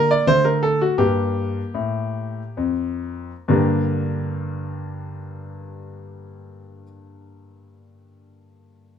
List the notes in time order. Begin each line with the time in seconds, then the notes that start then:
Already playing: D3 A#3
0.11 D5
0.27 D3 A3 C5
0.45 A#4
0.63 A4
0.81 F#4
0.98 G2 A#3 G4
1.74 A2
2.57 F2
3.48 G2 D3 A#3 D4 G4 A#4